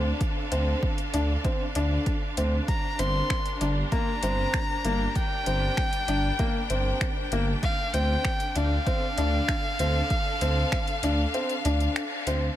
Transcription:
Already playing: detuned saw bass D2, string section D3 D4 A4 F5
0.21 kick, closed hi-hat
0.51 detuned saw bass D2, upright piano C4, closed hi-hat
0.83 kick
0.98 closed hi-hat
1.14 detuned saw bass D2, upright piano D4, closed hi-hat
1.45 upright piano C4, kick, closed hi-hat
1.75 detuned saw bass D2, upright piano D4, closed hi-hat
2.06 kick, closed hi-hat
2.37 detuned saw bass D2, upright piano C4, closed hi-hat
2.68 string section G3, violin A#5, kick, closed hi-hat
2.91 string section A#4
2.99 detuned saw bass G1, upright piano C4, violin C6, closed hi-hat
3.30 finger snap, kick
3.46 closed hi-hat
3.61 detuned saw bass G1, upright piano D4, closed hi-hat
3.92 upright piano A#3, violin A#5, kick, closed hi-hat
4.23 detuned saw bass G1, upright piano C4, closed hi-hat
4.54 finger snap, kick, closed hi-hat
4.84 detuned saw bass G1, upright piano A#3, closed hi-hat
4.91 string section G5
5.16 violin G5, kick, closed hi-hat
5.46 detuned saw bass G1, upright piano C4, closed hi-hat
5.77 finger snap, kick
5.93 closed hi-hat
6.08 detuned saw bass G1, upright piano D4, closed hi-hat
6.39 upright piano A#3, kick, closed hi-hat
6.70 detuned saw bass G1, upright piano C4, closed hi-hat
7.01 finger snap, kick, closed hi-hat
7.32 detuned saw bass G1, upright piano A#3, closed hi-hat
7.63 string section D3, violin F5, kick, closed hi-hat
7.93 detuned saw bass D2, upright piano C4, violin G5, closed hi-hat
8.25 finger snap, kick
8.40 closed hi-hat
8.56 detuned saw bass D2, upright piano D4, violin F5, closed hi-hat
8.87 upright piano C4, kick, closed hi-hat
8.95 string section A4
9.18 detuned saw bass D2, upright piano D4, closed hi-hat
9.48 finger snap, kick, closed hi-hat
9.79 detuned saw bass D2, upright piano C4, closed hi-hat
9.85 string section F5
10.10 kick, closed hi-hat
10.41 detuned saw bass D2, upright piano C4, closed hi-hat
10.72 finger snap, kick
10.88 closed hi-hat
11.03 detuned saw bass D2, upright piano D4, closed hi-hat
11.34 upright piano C4, closed hi-hat
11.49 closed hi-hat
11.65 detuned saw bass D2, upright piano D4, closed hi-hat
11.80 closed hi-hat
11.96 finger snap, closed hi-hat
12.27 detuned saw bass D2, upright piano C4, closed hi-hat

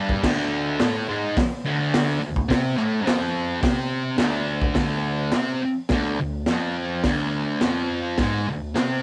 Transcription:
Already playing: distorted electric guitar G2 G3
0.09 kick
0.23 distorted electric guitar D2 D3, kick, snare, crash
0.80 distorted electric guitar A2 A3, snare, clap, open hi-hat
1.09 distorted electric guitar G#2 G#3
1.37 muted distorted electric guitar stroke, kick, snare, open hi-hat
1.65 distorted electric guitar D2 D3
1.94 snare, clap, open hi-hat
2.20 distorted electric guitar D2
2.36 kick
2.48 distorted electric guitar C3 C4, kick, snare, open hi-hat
2.77 distorted electric guitar A2 A3, clap
3.05 distorted electric guitar F2 F3, snare, clap, open hi-hat
3.62 distorted electric guitar C3 C4, kick, snare, open hi-hat
4.17 distorted electric guitar D2 D3, snare, clap, open hi-hat
4.62 kick
4.75 distorted electric guitar D2 D3, kick, snare, open hi-hat
5.32 distorted electric guitar C3 C4, snare, clap, open hi-hat
5.63 muted distorted electric guitar stroke
5.89 distorted electric guitar D2 D3, kick, snare, open hi-hat
6.20 distorted electric guitar D2
6.46 distorted electric guitar F2 F3, snare, clap, open hi-hat
7.04 distorted electric guitar D2 D3, kick, snare, open hi-hat
7.61 distorted electric guitar F2 F3, snare, clap, open hi-hat
8.18 distorted electric guitar G#2 G#3, kick, snare, open hi-hat
8.48 distorted electric guitar D2
8.75 distorted electric guitar C3 C4, snare, clap, open hi-hat

